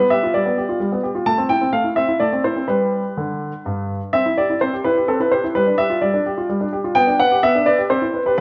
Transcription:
grand piano
0.00 B3
0.10 G4 E5
0.23 F4
0.34 G3 D5
0.46 B3
0.57 G4
0.69 F4
0.80 G3
0.92 B3
1.03 G4
1.15 F4
1.26 A3 A5
1.38 C4
1.49 E4 G5
1.61 C4
1.73 A3 F5
1.84 E4
1.96 C4 E5
2.08 E4
2.20 A3 D5
2.33 C4
2.44 E4 C5
2.56 C4
2.68 G3 G4 B4
3.17 D3
3.66 G2
4.13 C4 E5
4.26 E4
4.38 G4 D5
4.50 E4
4.61 C4 C5
4.73 G4
4.84 E4 B4
4.97 G4
5.08 C4 A4
5.20 E4 B4
5.32 G4 C5
5.44 E4
5.55 G3 B4
5.67 D4
5.78 G4 E5
5.90 F4
6.01 G3 D5
6.14 D4
6.26 G4
6.37 F4
6.49 G3
6.61 D4
6.73 G4
6.84 F4
6.95 B3 G5
7.07 D4
7.20 B4 F#5
7.31 G4
7.43 B3 E5
7.55 D4
7.66 B4 D5
7.78 G4
7.90 C4 C5
8.02 E4
8.14 B4
8.26 G4 B4

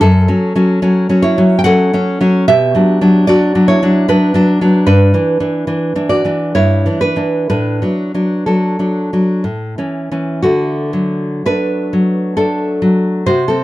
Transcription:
nylon-string guitar
0.01 F#2 C#4 A4
0.28 F#3 C#4
0.56 F#3 C#4
0.82 F#3 C#4
1.09 F#3 C#4
1.22 E4 C#5
1.38 F#3 C#4
1.59 G5
1.64 F#3 C#4 A4 F#5
1.93 F#3 C#4
2.21 F#3 C#4
2.48 B2 G4 E5
2.75 F#3 D4
3.01 F#3 D4
3.27 F#3 D4 F#4 D5
3.55 F#3 D4
3.68 E4 C#5
3.82 F#3 D4
4.08 F#3 D4 B4
4.34 F#3 D4
4.61 F#3 D4
4.86 G2 D4 B4
5.14 E3 D4
5.40 E3 D4
5.67 E3 D4
5.96 E3 D4
6.09 F#4 D5
6.25 E3 D4
6.55 G2 E4 C#5
6.86 E3 D4
7.01 D4 B4
7.16 E3 D4
7.50 A2 D4 B4
7.82 F#3 D4
8.14 F#3 D4
8.46 F#3 D4 A4
8.79 F#3 D4
9.13 F#3 D4
9.44 A2
9.78 E3 C#4
10.11 E3 C#4
10.42 D3 A3 F#4
10.93 F#3
11.46 A3 D4 B4
11.93 F#3
12.37 A3 D4 A4
12.82 F#3
13.26 C3 F#4 C5
13.48 C4 A4

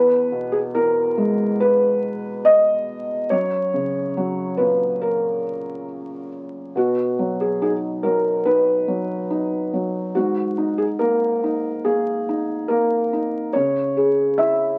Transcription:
felt piano
Already playing: E2 B4
0.32 B2
0.52 G#4
0.74 E3 A#4
1.17 G#3
1.60 B4
2.45 D#5
3.30 F#2 C#5
3.73 C#3
4.17 F#3
4.57 A#2 B4
5.02 A#4
6.75 B2 F#4
7.19 F#3
7.41 G#4
7.62 D#4 G#4
8.03 F#3 A#4
8.45 D#4 B4
8.88 F#3
9.30 D#4
9.73 F#3
10.15 G#2 F#4
10.58 D#4
10.78 G#4
10.99 A#3 A#4
11.44 D#4
11.85 A#3 G#4
12.29 D#4
12.68 A#3 A#4
13.13 D#4
13.53 C#3 C#5
13.97 G#4
14.38 E4 E5

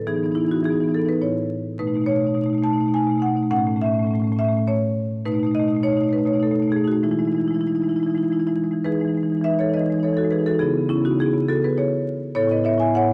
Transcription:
marimba
0.07 E3 B3 D#4 G#4
0.14 E3 B3 D#4
0.23 E3 B3 D#4
0.31 B3 D#4
0.35 E3 B3 E4
0.40 D#4
0.44 E3 B3 D#4
0.51 E3 B3 F#4
0.56 D#4
0.62 E3 B3 D#4 G#4
0.70 E3 B3 D#4
0.76 B3
0.80 E3 B3 D#4
0.88 E3 B3 D#4
0.94 E3 D#4 A4
0.99 B3
1.05 E3 B3 D#4 B4
1.12 B3 D#4
1.21 A2 B3 E4 C#5
1.79 B2 A3 D#4 B4
1.87 B2 A3 D#4
1.94 B2 A3 D#4
2.01 A3 D#4
2.06 B2 D#4 C#5
2.12 B2 A3
2.17 A3 D#4
2.24 B2 D#4
2.29 A3
2.34 B2 A3 D#4
2.42 B2 A3 D#4
2.50 B2 D#4
2.54 A3 D#4
2.62 B2 A3 D#4 A5
2.70 B2 A3 D#4
2.78 B2 A3 D#4
2.86 B2 A3 D#4
2.94 B2 A3 D#4 G#5
3.02 A3 D#4
3.07 B2 A3
3.11 D#4
3.16 B2 A3 D#4
3.22 B2 F#5
3.26 A3 D#4
3.34 B2 A3 D#4
3.43 A3
3.51 A2 A3 C#4 F#5
3.58 A2 A3 C#4
3.67 A2 A3 C#4
3.76 A2 A3 C#4
3.82 A3 E5
3.86 A2 C#4
3.92 A2 A3 C#4
3.99 A3 C#4
4.04 A2 A3
4.11 A2 C#4
4.15 A3
4.20 A2 C#4
4.24 A3 C#4
4.32 A2 A3
4.36 A3 C#4 E5
4.41 A2 C#4
4.48 A2 A3
4.53 C#4
4.57 A2 A3
4.67 A2 A3 C#4 C#5
5.25 B2 A3 D#4 B4
5.32 B2 A3 D#4
5.40 A3 D#4
5.44 B2 D#4
5.51 B2 A3 D#4 D#5
5.59 A3 D#4
5.64 B2
5.68 B2 A3 D#4
5.75 A3 D#4
5.80 B2 D#4 C#5
5.85 B2 A3
5.90 A3 D#4
5.97 B2 D#4
6.02 A3 D#4
6.07 B2 A3 D#4
6.13 B2 B4
6.18 A3 D#4
6.25 B2 A3 D#4 C#5
6.33 B2 A3 D#4
6.40 B2 A3 D#4 A4
6.47 A3 D#4
6.53 B2 D#4
6.59 B2 A3 D#4
6.68 B2 A3 D#4
6.72 G#4
6.76 B2 A3 D#4
6.84 B2 A3 D#4 F#4
6.92 A3 D#4
7.03 E3 G#3 D#4 E4
7.11 E3 G#3 D#4 E4
7.19 E3 G#3 D#4 E4
7.25 G#3 D#4 E4
7.30 E3 E4
7.35 E3 G#3 D#4
7.40 G#3 E4
7.44 E3 D#4 E4
7.50 G#3 D#4 E4
7.55 E3 G#3
7.60 E3 D#4 E4
7.67 G#3 D#4 E4
7.72 E3 G#3 D#4 E4
7.80 E3 G#3 D#4 E4
7.88 E3 G#3 D#4 E4
7.96 E3 G#3 D#4 E4
8.03 E3 E4
8.07 G#3 D#4 E4
8.14 E3 G#3 D#4 E4
8.23 E3 G#3 D#4 E4
8.30 E3 G#3 D#4 E4
8.39 E3 G#3 D#4 E4
8.47 E3 G#3 D#4 E4
8.56 E3 G#3 D#4
8.64 E3 G#3 D#4
8.71 E3 G#3 D#4
8.85 E3 G#3 D#4 G#4 B4
8.92 E3 G#3 D#4
9.00 G#3 D#4
9.05 E3 D#4
9.09 G#3
9.14 E3 G#3 D#4
9.23 E3 G#3 D#4
9.30 E3 D#4
9.35 G#3 D#4
9.41 E3 G#3 B4 E5
9.46 D#4
9.50 E3 G#3 D#4
9.59 E3 D#4 A4 C#5
9.64 G#3
9.69 E3 G#3 D#4
9.74 E3 D#4 B4 D#5
9.81 G#3 D#4
9.86 E3 G#3
9.92 E3 D#4
9.98 G#3 D#4
10.03 E3 G#3 A4 C#5
10.08 D#4
10.13 E3 G#3 D#4 A4
10.18 E3 F#4
10.23 G#3 D#4
10.31 E3 G#3 D#4 G#4 B4
10.39 E3 G#3 D#4
10.46 E3 G#3 D#4 F#4 A4
10.54 D#4
10.59 C#3 B3 E4 G#4
10.66 C#3 B3
10.74 C#3 B3
10.82 B3
10.86 C#3 B3 C#4 E4
10.96 C#3 B3
11.03 C#3 B3 D#4 F#4
11.11 C#3 B3
11.19 B3 E4 G#4
11.24 C#3 B3
11.33 C#3 B3
11.41 C#3 B3
11.48 C#3 B3 F#4 A4
11.57 B3
11.62 C#3 B3 G#4 B4
11.77 C#3 B3 E4 G#4 C#5
12.35 A2 B3 E4 A4 C#5
12.42 B3 E4
12.47 A2 B3 E4
12.51 B4 D#5
12.57 A2 B3 E4
12.64 B3 E4 C#5 E5
12.69 A2 E4
12.73 B3
12.78 A2 B3 E4 E5 G#5
12.86 A2 E4
12.90 B3
12.94 B3 E4 C#5 F#5
12.99 A2 E4
13.04 B3
13.09 A2 E4

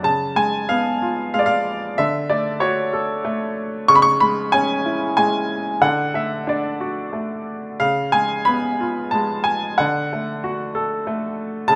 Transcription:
grand piano
0.03 C#3 A5
0.36 G#3 G#5
0.69 B3 F5
1.02 F4
1.34 G#3 F5
1.39 D5
1.46 F5
1.98 D3 E5
2.30 A3 D5
2.60 F#4 C#5
2.93 A4
3.25 A3
3.88 C#3 C#6
3.95 B5
4.02 C#6
4.20 G#3 B5
4.52 C#4 G#5
4.86 E4
5.17 G#3 G#5
5.81 D3 F#5
6.14 A3 E5
6.47 D4 D5
6.80 F#4
7.13 A3
7.80 C#3 F5
8.12 G#3 G#5
8.45 B3 B5
8.80 F4
9.11 G#3 A5
9.44 G#5
9.78 D3 F#5
10.13 A3
10.44 F#4
10.75 A4
11.07 A3
11.68 C#3 A5

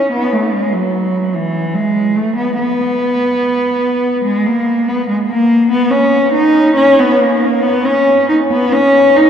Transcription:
cello
Already playing: C#4
0.12 B3
0.33 A3
0.53 G#3
0.73 F#3
1.35 E3
1.74 G#3
2.16 A3
2.37 B3
2.59 B3
4.25 G#3
4.46 A#3
4.88 B3
5.08 G#3
5.28 A#3
5.71 B3
5.90 C#4
6.33 D#4
6.76 C#4
6.99 B3
7.20 A#3
7.62 B3
7.85 C#4
8.29 D#4
8.51 B3
8.72 C#4
9.16 D#4

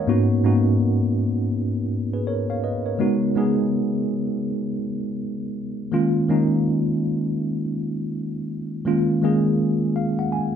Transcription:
tine electric piano
Already playing: A#4 C#5
0.07 G#2 A#3 B3 C#4 D#4 F#4
0.43 G#2 A#3 B3 C#4 D#4 F#4
2.14 G#4 B4
2.27 A#4 C#5
2.50 C#5 F5
2.64 B4 D#5
2.86 A#4 C#5
2.99 C#3 G#3 B3 D#4 F#4
3.35 C#3 G#3 B3 D#4 G#4
5.92 D#3 G#3 A#3 C#4 F4
6.28 D#3 G#3 A#3 C#4 D#4
8.85 D#3 G#3 A#3 C#4 F4
9.22 D#3 G#3 A#3 C#4 G#4
9.96 F5
10.19 F#5
10.32 G#5

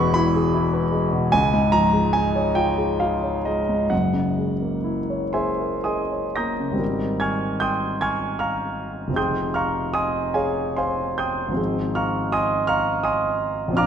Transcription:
grand piano
Already playing: E1 E2 B2 E3 G#3 E4 B4 B5 C#6 D#6
0.14 E4 B5
0.35 G#4
0.54 E4
0.73 B4
0.92 G#3
1.12 B2
1.32 C#2 G#5
1.53 G#2
1.72 F3 A#5
1.93 G#3
2.13 D#4 G#5
2.36 C#5
2.55 F4 G5
2.78 G#4
3.00 F4 F5
3.23 C#5
3.45 G#3 D#5
3.69 G#2
3.90 F#1 F#2 F#5
4.13 C#3
4.39 G#3
4.62 A#3
4.84 E4
5.10 C#5
5.33 G#4 C5 E5 G#5 C6
5.60 A#4
5.84 G#4 D#5 G#5 C6 D#6
6.12 C#5
6.36 A#3 A#5 D#6 G6 A#6
6.60 C#3
6.71 G#1 G3
6.75 C4 D#4
6.79 A#4
7.20 G#5 C#6 F6 G#6
7.60 G5 C6 D#6 G6
8.01 G#5 C#6 F6 G#6
8.39 F5 A#5 C#6 F6
9.08 F1 F3
9.12 C4 D#4 G#4
9.16 G5 C6 D#6 G6
9.54 F5 A#5 C#6 F6
9.94 D#5 G#5 C6 D#6
10.34 G#4 C#5 F5 G#5
10.77 C5 F5 G#5 C6
11.18 G5 C6 D#6 G6
11.48 G#1 F3
11.52 C4 D#4
11.57 G#4
11.95 F5 A#5 C#6 F6
12.32 D#5 G#5 C6 D#6
12.67 F5 A#5 C#6 F6
13.03 D#5 G#5 C6 D#6
13.68 A#1 F3
13.73 C4 D4 F4
13.77 F5 A#5 D6 F6

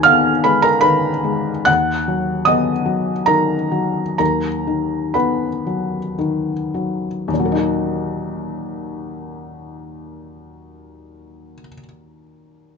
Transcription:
felt piano
Already playing: D#2 D#3 G#3 G#5 G#6
0.03 B3 F5 F6
0.44 G#3 B4 B5
0.62 A#4 A#5
0.81 D#3 B4 B5
1.24 G#3
1.65 D#2 F#5 F#6
2.08 F#3
2.45 B3 D#5 D#6
2.86 F#3
3.26 D#3 A#4 A#5
3.72 F#3
4.18 D#2 A#4 A#5
4.67 D#3
5.14 B3 B4 B5
5.66 F#3
6.18 D#3
6.74 F#3
7.28 D#2
7.34 A#2
7.40 F#3
7.45 A#3
7.52 D#4
7.57 F#4

